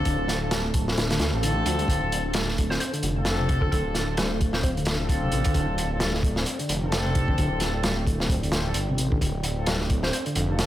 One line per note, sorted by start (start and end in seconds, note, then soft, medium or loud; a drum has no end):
0.00 0.38 C4 loud
0.00 0.38 D4 loud
0.00 10.66 D4 medium
0.00 0.38 F4 medium
0.00 0.38 A4 loud
0.00 10.66 A4 medium
0.00 1.84 C5 medium
0.00 1.88 A5 medium
0.05 0.95 D1 loud
0.05 0.17 D3 loud
0.05 kick loud
0.05 closed hi-hat medium
0.28 snare soft
0.28 closed hi-hat medium
0.41 0.60 C4 medium
0.41 0.60 D4 medium
0.41 0.60 F4 medium
0.41 0.60 A4 medium
0.51 0.63 G3 loud
0.51 snare loud
0.51 closed hi-hat medium
0.65 0.86 A3 medium
0.74 kick loud
0.74 closed hi-hat medium
0.88 1.09 C4 medium
0.88 snare medium
0.97 1.19 D1 medium
0.97 snare loud
0.97 closed hi-hat medium
1.10 1.19 D3 medium
1.10 snare loud
1.10 closed hi-hat medium
1.19 1.31 D2 loud
1.19 1.27 D3 medium
1.19 snare loud
1.19 closed hi-hat medium
1.33 1.63 A1 medium
1.33 1.42 A3 medium
1.33 2.21 C4 loud
1.33 2.21 D4 loud
1.33 2.21 F4 loud
1.33 2.21 A4 loud
1.43 1.54 D3 medium
1.43 closed hi-hat medium
1.56 1.65 A3 loud
1.66 1.86 D2 loud
1.66 1.78 F3 loud
1.66 closed hi-hat medium
1.79 1.88 G3 loud
1.79 closed hi-hat soft
1.88 2.77 D1 loud
1.88 2.00 D3 loud
1.88 10.66 D5 medium
1.88 5.54 F5 medium
1.88 kick loud
1.88 closed hi-hat medium
2.12 closed hi-hat medium
2.24 2.43 C4 medium
2.24 2.43 D4 medium
2.24 2.43 F4 medium
2.24 2.43 A4 medium
2.33 2.46 G3 loud
2.33 snare loud
2.33 closed hi-hat loud
2.48 2.69 A3 medium
2.48 snare soft
2.58 kick medium
2.58 closed hi-hat medium
2.70 2.92 C4 medium
2.70 2.77 C5 medium
2.70 snare medium
2.80 2.89 C5 medium
2.80 closed hi-hat medium
2.93 3.15 D3 medium
2.93 closed hi-hat soft
3.03 3.69 F1 loud
3.03 closed hi-hat medium
3.16 3.21 D3 medium
3.16 4.05 C4 loud
3.16 4.05 D4 medium
3.16 4.05 F4 loud
3.16 4.05 A4 loud
3.25 snare loud
3.25 closed hi-hat medium
3.39 3.48 C3 loud
3.49 3.61 C3 loud
3.49 kick loud
3.49 closed hi-hat medium
3.61 3.71 D3 loud
3.61 3.68 A4 medium
3.61 kick medium
3.72 4.61 D1 loud
3.72 3.83 D3 loud
3.72 3.80 A4 medium
3.72 kick loud
3.72 closed hi-hat medium
3.95 snare soft
3.95 closed hi-hat medium
4.08 4.27 C4 medium
4.08 4.27 D4 medium
4.08 4.27 F4 medium
4.08 4.27 A4 medium
4.17 4.30 G3 loud
4.17 4.38 C5 medium
4.17 snare loud
4.17 closed hi-hat loud
4.31 4.52 A3 medium
4.41 kick loud
4.41 closed hi-hat medium
4.53 4.75 C4 medium
4.53 4.60 C5 medium
4.53 snare medium
4.63 5.30 D1 medium
4.63 4.72 C5 medium
4.63 kick loud
4.63 closed hi-hat medium
4.77 4.98 D3 medium
4.77 closed hi-hat soft
4.85 snare loud
4.85 closed hi-hat medium
5.00 5.05 D3 medium
5.00 5.88 C4 loud
5.00 5.88 D4 loud
5.00 5.88 F4 loud
5.00 5.88 A4 loud
5.09 kick loud
5.09 closed hi-hat medium
5.22 5.31 C3 loud
5.32 5.43 A1 medium
5.32 5.44 C3 loud
5.32 closed hi-hat medium
5.44 5.53 D3 loud
5.44 kick loud
5.44 closed hi-hat medium
5.54 6.44 D1 loud
5.54 5.66 D3 loud
5.54 9.20 G5 medium
5.54 kick loud
5.54 closed hi-hat medium
5.78 closed hi-hat medium
5.91 6.10 C4 medium
5.91 6.10 D4 medium
5.91 6.10 F4 medium
5.91 6.10 A4 medium
6.00 6.13 G3 loud
6.00 snare loud
6.00 closed hi-hat medium
6.14 6.35 A3 medium
6.14 snare soft
6.23 kick loud
6.23 closed hi-hat medium
6.36 6.58 C4 medium
6.36 snare medium
6.46 closed hi-hat medium
6.59 6.81 D3 medium
6.59 closed hi-hat soft
6.69 7.36 F1 loud
6.69 closed hi-hat medium
6.83 6.88 D3 medium
6.83 7.71 C4 loud
6.83 7.71 D4 loud
6.83 7.71 F4 medium
6.83 7.71 A4 loud
6.92 snare loud
6.92 closed hi-hat medium
7.05 7.14 C3 loud
7.15 7.27 C3 loud
7.15 kick medium
7.15 closed hi-hat medium
7.28 7.37 D3 loud
7.28 kick medium
7.38 8.27 D1 loud
7.38 7.50 D3 loud
7.38 kick loud
7.38 closed hi-hat medium
7.60 snare soft
7.60 closed hi-hat medium
7.74 7.93 C4 medium
7.74 7.93 D4 medium
7.74 7.93 F4 medium
7.74 7.93 A4 medium
7.83 7.96 G3 loud
7.83 snare loud
7.83 closed hi-hat medium
7.97 8.19 A3 medium
8.07 kick loud
8.07 closed hi-hat medium
8.20 8.42 C4 medium
8.20 snare medium
8.29 8.74 D1 medium
8.29 kick loud
8.29 closed hi-hat medium
8.43 8.64 D3 medium
8.43 closed hi-hat soft
8.52 8.64 C4 medium
8.52 8.64 D4 medium
8.52 8.64 F4 medium
8.52 8.64 C5 medium
8.52 snare loud
8.52 closed hi-hat medium
8.66 8.71 D3 medium
8.66 8.76 C4 medium
8.66 8.76 D4 medium
8.66 8.76 F4 medium
8.66 8.76 A4 medium
8.74 9.00 G1 medium
8.74 closed hi-hat loud
8.89 8.97 C3 loud
8.98 9.18 A1 loud
8.98 9.10 C3 loud
8.98 closed hi-hat medium
9.12 9.20 D3 loud
9.12 kick medium
9.21 10.10 D1 loud
9.21 9.33 D3 loud
9.21 10.66 F5 medium
9.21 kick loud
9.21 closed hi-hat medium
9.43 closed hi-hat medium
9.57 9.76 C4 medium
9.57 9.76 D4 medium
9.57 9.76 F4 medium
9.57 9.76 A4 medium
9.66 9.79 G3 loud
9.66 snare loud
9.66 closed hi-hat medium
9.80 10.02 A3 medium
9.80 snare soft
9.90 kick medium
9.90 closed hi-hat medium
10.03 10.25 C4 medium
10.03 10.10 C5 medium
10.03 snare soft
10.13 10.21 C5 medium
10.13 closed hi-hat medium
10.26 10.48 D3 medium
10.26 closed hi-hat soft
10.35 10.66 F1 loud
10.35 closed hi-hat medium
10.49 10.54 D3 medium
10.49 10.66 C4 loud
10.49 10.66 D4 loud
10.49 10.66 F4 loud
10.49 10.66 A4 loud
10.59 snare loud
10.59 closed hi-hat loud